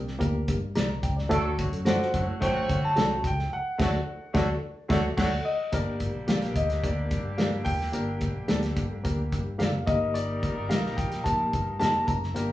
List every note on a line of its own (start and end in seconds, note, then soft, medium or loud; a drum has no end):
0.00 0.15 C2 medium
0.00 0.17 G5 medium
0.08 snare soft
0.19 0.43 D2 loud
0.19 0.57 A#3 medium
0.19 0.57 D4 medium
0.19 0.57 G4 medium
0.19 0.58 A#4 loud
0.19 kick medium
0.19 closed hi-hat medium
0.48 0.71 G2 loud
0.48 kick loud
0.48 closed hi-hat medium
0.75 0.98 C2 medium
0.75 0.87 G4 medium
0.75 0.87 A#4 medium
0.75 0.88 D5 medium
0.75 1.27 A#5 medium
0.75 snare medium
0.75 closed hi-hat medium
1.03 1.26 C#2 medium
1.03 1.16 G5 medium
1.03 kick medium
1.03 closed hi-hat medium
1.17 1.43 D5 medium
1.17 snare soft
1.29 1.65 D2 loud
1.29 1.53 F#3 loud
1.29 1.67 A3 loud
1.29 1.53 A3 loud
1.29 1.67 D4 loud
1.29 1.53 D4 medium
1.29 1.67 F#4 loud
1.29 1.68 A4 loud
1.29 1.53 A4 loud
1.29 kick loud
1.29 closed hi-hat loud
1.58 1.80 D3 medium
1.58 1.80 F#3 medium
1.58 1.81 A3 medium
1.58 1.80 F#4 medium
1.58 kick loud
1.58 closed hi-hat medium
1.72 1.95 F#2 medium
1.72 closed hi-hat medium
1.85 2.08 F3 medium
1.85 2.08 F#3 medium
1.85 2.23 A3 medium
1.85 2.08 D4 medium
1.85 2.23 D4 medium
1.85 2.08 F4 medium
1.85 1.97 F#4 loud
1.85 2.23 F#4 medium
1.85 1.97 A4 loud
1.85 2.23 C5 medium
1.85 1.98 D5 loud
1.85 2.43 F#5 loud
1.85 snare loud
1.85 closed hi-hat medium
2.02 snare soft
2.12 2.25 F#2 medium
2.12 2.35 D3 medium
2.12 2.35 F#3 medium
2.12 2.35 A3 medium
2.12 2.35 F#4 medium
2.12 kick medium
2.12 closed hi-hat medium
2.27 2.39 A2 medium
2.40 2.64 A1 loud
2.40 3.20 D3 medium
2.40 3.20 F#3 loud
2.40 2.78 F#3 medium
2.40 2.78 A3 medium
2.40 3.20 A3 loud
2.40 2.78 D4 medium
2.40 3.20 F#4 loud
2.40 2.79 C5 medium
2.40 2.81 G5 loud
2.40 kick medium
2.40 closed hi-hat medium
2.69 2.92 D3 loud
2.69 kick medium
2.69 closed hi-hat medium
2.85 3.26 A5 loud
2.95 3.19 C2 medium
2.95 3.33 A3 medium
2.95 3.33 D4 medium
2.95 3.07 F#4 medium
2.95 3.34 F#4 medium
2.95 3.08 A4 loud
2.95 3.34 A4 medium
2.95 3.08 D5 medium
2.95 snare loud
2.95 closed hi-hat medium
3.24 3.47 C#2 medium
3.24 3.54 G5 medium
3.24 kick medium
3.24 closed hi-hat medium
3.39 snare soft
3.53 4.59 F#5 medium
3.79 3.98 D2 loud
3.79 3.93 D3 medium
3.79 3.93 F#3 medium
3.79 3.98 A3 loud
3.79 3.93 A3 medium
3.79 3.98 D4 medium
3.79 3.93 F#4 medium
3.79 3.98 F#4 medium
3.79 3.99 F#4 medium
3.79 3.98 A4 loud
3.79 3.99 A4 medium
3.79 3.99 D5 loud
3.79 kick loud
3.79 snare medium
3.79 crash medium
4.34 4.53 D2 loud
4.34 4.48 D3 medium
4.34 4.48 F#3 medium
4.34 4.48 A3 medium
4.34 4.53 A3 loud
4.34 4.53 D4 loud
4.34 4.48 F#4 medium
4.34 4.53 F#4 medium
4.34 4.54 F#4 loud
4.34 4.54 A4 loud
4.34 4.54 D5 loud
4.34 kick loud
4.34 snare loud
4.89 5.09 D2 loud
4.89 5.03 D3 loud
4.89 5.04 F#3 medium
4.89 5.08 A3 loud
4.89 5.04 A3 loud
4.89 5.09 D4 loud
4.89 5.08 F#4 loud
4.89 5.04 F#4 loud
4.89 5.09 F#4 loud
4.89 5.09 A4 loud
4.89 5.09 D5 medium
4.89 kick loud
4.89 snare loud
5.17 5.36 D2 loud
5.17 5.31 D3 loud
5.17 5.31 F#3 medium
5.17 5.31 A3 loud
5.17 5.31 F#4 loud
5.17 5.36 F#4 loud
5.17 5.37 A4 loud
5.17 5.37 D5 loud
5.17 5.46 F#5 medium
5.17 kick loud
5.17 snare loud
5.17 crash medium
5.45 5.73 D#5 medium
5.72 6.06 G1 loud
5.72 9.56 D3 medium
5.72 9.55 G3 medium
5.72 6.09 A#3 medium
5.72 9.56 A#3 medium
5.72 6.10 D4 medium
5.72 9.55 G4 medium
5.72 6.10 G4 medium
5.72 6.10 A#4 loud
5.72 6.30 D5 medium
5.72 kick loud
5.72 closed hi-hat loud
6.00 kick medium
6.00 closed hi-hat medium
6.15 6.26 A#1 medium
6.27 6.56 A#1 medium
6.27 6.65 A#3 medium
6.27 6.65 D4 medium
6.27 6.39 G4 medium
6.27 6.65 G4 medium
6.27 6.65 A#4 medium
6.27 6.39 A#4 medium
6.27 6.40 D5 medium
6.27 6.57 F5 medium
6.27 snare loud
6.27 closed hi-hat medium
6.42 snare soft
6.42 closed hi-hat medium
6.56 6.78 D2 medium
6.56 6.84 D#5 medium
6.56 kick medium
6.56 closed hi-hat medium
6.70 snare soft
6.70 closed hi-hat soft
6.82 7.06 D2 medium
6.82 7.20 A#3 medium
6.82 7.20 D4 medium
6.82 7.20 G4 medium
6.82 7.21 A#4 medium
6.82 7.35 D5 medium
6.82 kick medium
6.82 closed hi-hat medium
7.11 7.56 G2 loud
7.11 kick loud
7.11 closed hi-hat medium
7.38 7.75 A#3 medium
7.38 7.75 D4 medium
7.38 7.49 G4 medium
7.38 7.76 G4 medium
7.38 7.50 A#4 medium
7.38 7.76 A#4 medium
7.38 7.50 D5 medium
7.38 7.67 F5 medium
7.38 snare loud
7.38 closed hi-hat medium
7.65 7.88 D#2 medium
7.65 9.65 G5 loud
7.65 kick medium
7.65 open hi-hat medium
7.81 snare soft
7.92 8.27 G1 medium
7.92 8.30 A#3 medium
7.92 8.30 D4 medium
7.92 8.31 G4 medium
7.92 8.31 A#4 loud
7.92 closed hi-hat medium
8.21 kick medium
8.21 closed hi-hat medium
8.35 8.47 A#1 medium
8.48 8.71 D2 medium
8.48 8.86 A#3 medium
8.48 8.86 D4 medium
8.48 8.60 G4 medium
8.48 8.86 G4 medium
8.48 8.87 A4 loud
8.48 8.60 A#4 loud
8.48 8.61 D5 medium
8.48 snare loud
8.48 closed hi-hat medium
8.63 snare soft
8.63 closed hi-hat medium
8.77 8.99 G2 medium
8.77 kick medium
8.77 closed hi-hat medium
9.04 9.27 D2 medium
9.04 9.41 A#3 medium
9.04 9.41 D4 medium
9.04 9.42 G4 medium
9.04 9.42 A#4 medium
9.04 kick medium
9.04 closed hi-hat medium
9.32 9.61 G2 medium
9.32 kick medium
9.32 closed hi-hat medium
9.58 9.82 F#1 medium
9.58 9.86 A#3 medium
9.58 9.87 D4 medium
9.58 9.70 G4 medium
9.58 9.87 G4 medium
9.58 9.71 A#4 medium
9.58 9.87 A#4 medium
9.58 9.71 D5 medium
9.58 9.88 F5 medium
9.58 snare medium
9.58 closed hi-hat medium
9.87 10.43 G1 medium
9.87 12.05 G3 medium
9.87 10.54 A#3 medium
9.87 12.05 A#3 medium
9.87 10.54 D#4 medium
9.87 12.05 D#4 medium
9.87 10.54 G4 medium
9.87 12.05 A#4 medium
9.87 10.54 A#4 medium
9.87 10.15 D#5 medium
9.87 kick loud
9.87 closed hi-hat medium
10.14 10.72 D5 loud
10.14 closed hi-hat medium
10.43 kick medium
10.43 closed hi-hat medium
10.56 10.67 G1 medium
10.69 10.92 A#1 medium
10.69 11.07 A#3 medium
10.69 11.07 D#4 medium
10.69 10.81 G4 medium
10.69 11.07 G4 medium
10.69 11.07 A#4 medium
10.69 10.81 A#4 medium
10.69 10.82 D#5 medium
10.69 10.98 F5 medium
10.69 snare loud
10.69 closed hi-hat loud
10.86 snare soft
10.97 11.20 A#1 medium
10.97 11.23 G5 medium
10.97 kick medium
10.97 closed hi-hat medium
11.12 snare soft
11.12 closed hi-hat soft
11.24 11.48 A#1 medium
11.24 11.62 A#3 medium
11.24 11.62 D#4 medium
11.24 11.62 G4 medium
11.24 11.63 A#4 medium
11.24 11.76 A5 medium
11.24 kick medium
11.24 closed hi-hat medium
11.53 11.76 G2 loud
11.53 kick medium
11.53 closed hi-hat medium
11.79 12.03 F1 medium
11.79 12.17 A#3 medium
11.79 12.17 D#4 medium
11.79 11.91 G4 medium
11.79 12.18 G4 medium
11.79 12.18 A#4 medium
11.79 11.92 A#4 medium
11.79 11.92 D#5 medium
11.79 12.09 A5 loud
11.79 snare medium
11.79 closed hi-hat medium
12.07 12.30 F#1 medium
12.07 12.52 A#5 loud
12.07 kick medium
12.07 closed hi-hat medium
12.23 snare soft
12.34 12.52 G1 loud
12.34 12.52 D3 medium
12.34 12.52 G3 medium
12.34 12.52 A#3 medium
12.34 12.52 D4 medium
12.34 12.52 G4 medium
12.34 12.52 A#4 loud
12.34 closed hi-hat medium